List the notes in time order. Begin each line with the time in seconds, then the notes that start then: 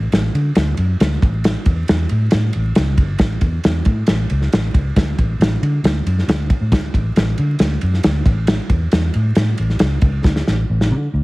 0.12 A1, snare, ride
0.34 D3, ride
0.55 D2, snare, ride
0.77 F#2, ride
1.00 D2, snare, ride
1.22 A1, kick, ride
1.44 snare, ride
1.66 E2, kick, ride
1.88 E2, snare, ride
2.09 A2, ride
2.31 A2, snare, ride
2.53 A1, ride
2.75 C#2, snare, ride
2.98 G1, kick, ride
3.18 A1, kick, snare, ride
3.41 E2, kick, ride
3.64 E2, snare, ride
3.85 A2, kick, ride
4.07 A1, snare, ride
4.30 C#2, ride
4.42 snare
4.53 A1, snare, ride
4.74 C#2, kick, ride
4.96 D2, kick, snare, ride
5.18 A1, kick, ride
5.39 A1, snare, ride
5.62 D3, ride
5.84 D2, snare, ride
6.06 F#2, ride
6.19 snare
6.28 D2, snare, ride
6.50 kick, ride
6.61 A2
6.72 D2, kick, snare, ride
6.94 A1, kick, ride
7.16 A1, snare, ride
7.38 D3, ride
7.59 D2, snare, ride
7.81 F#2, ride
7.94 snare
8.03 D2, snare, ride
8.26 A1, kick, ride
8.47 snare, ride
8.69 E2, kick, ride
8.91 E2, snare, ride
9.14 A2, ride
9.35 A2, snare, ride
9.58 A1, ride
9.70 snare
9.79 C#2, snare, ride
10.01 C#2, kick, ride
10.24 D2, kick, snare
10.36 snare
10.47 A1, snare
10.70 A1
10.81 snare
10.91 D3
11.13 D2